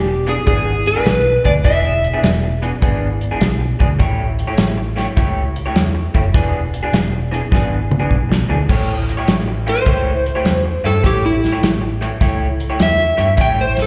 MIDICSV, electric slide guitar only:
0, 0, Header, 1, 2, 480
1, 0, Start_track
1, 0, Tempo, 586510
1, 1347, Time_signature, 4, 2, 24, 8
1, 11349, End_track
2, 0, Start_track
2, 0, Title_t, "Electric slide guitar"
2, 0, Program_c, 0, 29
2, 0, Note_on_c, 0, 67, 81
2, 235, Note_off_c, 0, 67, 0
2, 238, Note_on_c, 0, 68, 72
2, 377, Note_off_c, 0, 68, 0
2, 387, Note_on_c, 0, 68, 84
2, 715, Note_on_c, 0, 71, 86
2, 717, Note_off_c, 0, 68, 0
2, 1159, Note_off_c, 0, 71, 0
2, 1194, Note_on_c, 0, 74, 92
2, 1237, Note_off_c, 0, 74, 0
2, 1346, Note_on_c, 0, 76, 91
2, 1795, Note_off_c, 0, 76, 0
2, 7933, Note_on_c, 0, 72, 90
2, 8854, Note_off_c, 0, 72, 0
2, 8890, Note_on_c, 0, 69, 84
2, 9036, Note_off_c, 0, 69, 0
2, 9053, Note_on_c, 0, 67, 74
2, 9198, Note_off_c, 0, 67, 0
2, 9213, Note_on_c, 0, 64, 88
2, 9461, Note_off_c, 0, 64, 0
2, 10495, Note_on_c, 0, 76, 96
2, 10948, Note_off_c, 0, 76, 0
2, 10975, Note_on_c, 0, 79, 83
2, 11118, Note_off_c, 0, 79, 0
2, 11138, Note_on_c, 0, 72, 77
2, 11279, Note_off_c, 0, 72, 0
2, 11312, Note_on_c, 0, 69, 82
2, 11349, Note_off_c, 0, 69, 0
2, 11349, End_track
0, 0, End_of_file